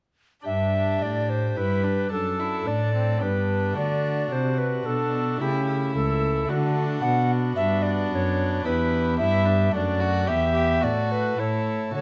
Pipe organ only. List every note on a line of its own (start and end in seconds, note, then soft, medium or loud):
0.42 0.98 D4 soft
0.42 2.06 G4 soft
0.47 0.98 G2 soft
1.03 1.54 A2 soft
1.57 2.08 G2 soft
2.08 3.17 D4 soft
2.08 3.17 A4 soft
2.13 2.63 F#2 soft
2.67 3.18 A2 soft
3.18 3.73 B3 soft
3.18 3.72 D4 soft
3.18 3.74 G4 soft
3.22 3.73 G2 soft
3.73 4.28 A3 soft
3.73 5.36 D4 soft
3.73 5.36 F#4 soft
3.77 4.28 D3 soft
4.32 4.82 C3 soft
4.86 5.37 B2 soft
5.37 6.44 A3 soft
5.37 6.45 E4 soft
5.41 5.92 C#3 soft
5.95 6.46 C#2 soft
6.46 7.00 A3 soft
6.46 7.00 D4 soft
6.46 7.01 F#4 soft
6.51 7.00 D3 soft
7.00 8.59 B3 soft
7.00 8.61 D4 soft
7.00 8.61 F#4 soft
7.05 7.54 B2 soft
7.57 8.07 G2 soft
8.12 8.62 F#2 soft
8.61 9.16 E2 soft
8.61 9.69 B3 soft
8.61 9.69 D4 soft
8.61 9.70 G4 soft
9.20 9.70 G2 soft
9.71 10.25 A3 soft
9.71 10.26 D4 soft
9.71 10.27 F#4 soft
9.75 10.25 F#2 soft
10.26 10.79 E2 soft
10.26 10.80 B3 soft
10.26 10.81 G4 soft
10.80 11.34 A2 soft
10.80 11.34 A3 soft
10.80 11.36 A4 soft
11.36 11.91 A2 soft
11.36 11.91 A3 soft
11.36 11.92 A4 soft
11.93 12.01 D3 soft
11.93 12.01 A3 soft
11.93 12.01 A4 soft